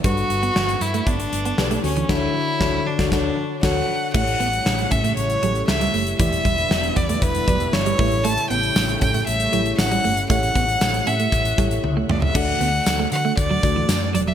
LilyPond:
<<
  \new Staff \with { instrumentName = "Violin" } { \time 4/4 \key d \major \tempo 4 = 117 fis'4. e'8 d'4. cis'8 | e'4. d'8 d'4 fis''4 | fis''4. e''8 cis''4 e''4 | e''4. d''8 b'4 cis''4 |
a''8 g''4 g''8 e''4 fis''4 | fis''4. e''4. r8 d''16 e''16 | fis''4. fis''8 d''4. d''16 e''16 | }
  \new Staff \with { instrumentName = "FM electric piano" } { \time 4/4 \key d \major << { <cis'' e''>16 r2. r8. | r1 | r1 | r1 |
r1 | r1 | r1 | } \\ { <g d' a' b'>4~ <g d' a' b'>16 r4. r16 <d' g' a' b'>8 <d' fis' a' cis''>8 | <d d' fis' a' cis''>8 r8 <d d' fis' a' cis''>8 r16 <d' fis' a' cis''>16 <d' fis' a' cis''>8 r8 <d' fis' a' cis''>8 r8 | <e' g' a' cis''>4~ <e' g' a' cis''>16 r4 r16 <e' g' a' cis''>4 r8 | <e' g' b' d''>4~ <e' g' b' d''>16 r4 r16 <e' g' b' d''>4 <e' g' a' b' cis''>8~ |
<e' g' a' b' cis''>4 r4. <e' g' a' cis''>4 r8 | <e' g' a' cis''>4~ <e' g' a' cis''>16 r4 r16 <e' g' a' cis''>4 r8 | <a d' fis' a' d''>4~ <a d' fis' a' d''>16 r4 r16 <a d' fis' a' d''>4 r8 | } >> }
  \new Staff \with { instrumentName = "FM electric piano" } { \clef bass \time 4/4 \key d \major g,4. r2 d8 | r1 | a,4. r2 r8 | e4. r2 a,8~ |
a,4 r2 r8 a,8~ | a,4 r2. | d4. r2 r8 | }
  \new Staff \with { instrumentName = "Clean electric guitar" } { \time 4/4 \key d \major g16 r8 b16 d'16 r8 a16 b16 r8 b16 r16 a16 r16 e16 | r1 | a16 r16 b16 r8. cis'16 a16 r8 fis16 r8 g16 a16 r16 | e16 r16 g16 r8. b16 a16 r8 fis16 r8 g16 a16 r16 |
a16 r16 b16 r8. cis'16 a16 r8 fis16 r8 g16 a16 r16 | a16 r16 b16 r8. cis'16 a16 r8 g16 r8 a16 a16 r16 | d'16 r16 b16 r8 a16 r16 a16 r16 fis16 r16 e16 r8 fis16 fis16 | }
  \new Staff \with { instrumentName = "Analog synth pad" } { \clef bass \time 4/4 \key d \major << { r1 | r1 | <g e'>1~ | <g e'>1~ |
<g e'>1~ | <g e'>1 | r1 | } \\ { r1 | r1 | <cis a>1 | <d b>2.~ <d b>8 <cis a>8~ |
<cis a>1~ | <cis a>1 | r1 | } >> }
  \new Staff \with { instrumentName = "Fingered electric bass" } { \clef bass \time 4/4 \key d \major g,,8 g,,8 g,,8 g,8 g,,8 g,,8 b,,8 d,8 | d,8 r8 d,8 r16 d,16 d,8 r8 d,8 r8 | a,,8 a,,8 a,,8 a,8 a,,8 a,,8 cis,8 fis,,8 | e,,8 e,,8 e,,8 e,8 e,,8 e,,8 g,,8 a,,8~ |
a,,8 a,,8 a,,8 a,8 a,,8 a,,8 a,,8 g,,8 | a,,8 a,,8 a,,8 a,8 a,,8 a,,8 cis,8 cis,8 | d,8 d,8 d,8 d8 d,8 d,8 fis,8 e,,8 | }
  \new DrumStaff \with { instrumentName = "Drums" } \drummode { \time 4/4 <hh bd>16 hh16 hh16 hh16 sn16 hh16 hh16 hh16 <hh bd>16 hh16 hh16 hh16 sn16 hh16 hho16 hh16 | <cymc bd sn>4 <bd sn>8. <bd sn>16 <bd sn>4 <cymc bd sn>4 | <cymc bd>16 hh16 hh16 hh16 sn16 hh16 <hh bd>16 hh16 hh16 hh16 hh16 hh16 sn16 hh16 hho16 hh16 | <hh bd>16 hh16 <hh bd>16 hh16 sn16 hh16 <hh bd>16 hh16 <hh bd>16 hh16 <hh bd>16 hh16 sn16 hh16 <hho bd>16 hh16 |
hh16 hh16 hh16 hh16 <sn tamb>16 hh16 <hh bd>16 hh16 hh16 hh16 hh16 hh16 <sn tamb>16 hh16 hho16 hh16 | <hh bd>16 hh16 <hh bd>16 hh16 <sn tamb>16 hh16 hh16 hh16 <hh bd>16 hh16 <hh bd>16 hh16 tommh8 toml16 tomfh16 | <cymc bd>8 hh8 <hh sn tamb>8 hh8 <hh bd>8 <hh bd>8 <hh sn tamb>8 hh8 | }
>>